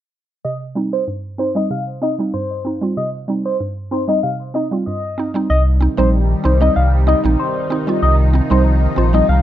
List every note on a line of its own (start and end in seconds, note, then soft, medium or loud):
0.45 0.92 C3 medium
0.45 0.57 D#5 loud
0.75 0.89 G3 medium
0.75 0.89 C4 medium
0.75 0.90 D#4 medium
0.93 1.04 C5 medium
1.08 1.55 G2 medium
1.38 1.45 C4 medium
1.38 1.46 D#4 medium
1.38 1.52 C5 medium
1.55 1.67 G3 medium
1.55 1.68 C4 medium
1.55 1.68 D#4 medium
1.55 1.67 D#5 medium
1.71 2.18 C3 medium
1.71 1.83 F5 medium
2.02 2.09 C4 medium
2.02 2.10 D#4 medium
2.02 2.15 D#5 medium
2.19 2.31 G3 medium
2.19 2.31 C4 medium
2.19 2.32 D#4 medium
2.34 2.82 G2 medium
2.34 2.79 C5 medium
2.65 2.72 C4 medium
2.65 2.73 D#4 medium
2.81 2.94 G3 medium
2.81 2.94 C4 medium
2.81 2.95 F4 medium
2.97 3.45 C3 medium
2.97 3.10 D#5 loud
3.28 3.42 G3 medium
3.28 3.42 C4 medium
3.28 3.43 D#4 medium
3.45 3.57 C5 medium
3.60 4.08 G2 medium
3.91 3.98 C4 medium
3.91 3.99 D#4 medium
3.91 4.04 C5 medium
4.08 4.20 G3 medium
4.08 4.20 C4 medium
4.08 4.21 D#4 medium
4.08 4.20 D#5 medium
4.23 4.71 C3 medium
4.23 4.36 F5 medium
4.54 4.61 C4 medium
4.54 4.62 D#4 medium
4.54 4.67 D#5 medium
4.71 4.83 G3 medium
4.71 4.84 C4 medium
4.71 4.84 F4 medium
4.86 5.35 G2 medium
4.86 5.32 D#5 medium
5.18 5.25 C4 medium
5.18 5.26 D#4 medium
5.34 5.46 G3 medium
5.34 5.47 C4 medium
5.34 5.47 D#4 medium
5.50 5.88 C2 loud
5.50 9.42 C3 medium
5.50 9.42 D#3 medium
5.50 8.00 G3 medium
5.50 9.42 D#4 loud
5.50 5.62 D#5 loud
5.81 5.88 C4 medium
5.81 5.89 D#4 medium
5.97 6.35 A#1 medium
5.97 6.10 G3 medium
5.97 6.10 C4 medium
5.97 6.10 D#4 medium
5.97 6.09 C5 medium
6.44 6.70 C2 loud
6.44 6.51 C4 medium
6.44 6.52 D#4 medium
6.44 6.57 C5 medium
6.61 6.73 G3 medium
6.61 6.73 C4 medium
6.61 6.74 D#4 medium
6.61 6.73 D#5 medium
6.76 7.15 C2 loud
6.76 6.89 F5 medium
7.07 7.14 C4 medium
7.07 7.15 D#4 medium
7.07 7.20 D#5 medium
7.24 7.36 A#1 medium
7.24 7.36 G3 medium
7.24 7.36 C4 medium
7.24 7.37 D#4 medium
7.39 7.85 C5 medium
7.70 7.77 C4 medium
7.70 7.78 D#4 medium
7.87 7.99 G3 medium
7.87 8.00 C4 medium
7.87 8.00 F4 medium
8.02 8.41 C2 loud
8.02 9.42 F3 medium
8.02 8.15 D#5 loud
8.33 8.40 C4 medium
8.33 8.41 D#4 medium
8.50 8.88 C2 medium
8.50 8.62 G3 medium
8.50 8.63 C4 medium
8.50 8.63 D#4 medium
8.50 8.62 C5 medium
8.96 9.22 A#1 medium
8.96 9.03 C4 medium
8.96 9.04 F4 medium
8.96 9.10 C5 medium
9.13 9.25 G3 medium
9.13 9.26 C4 medium
9.13 9.26 D#4 medium
9.13 9.25 D#5 medium
9.29 9.42 C2 loud
9.29 9.42 F5 medium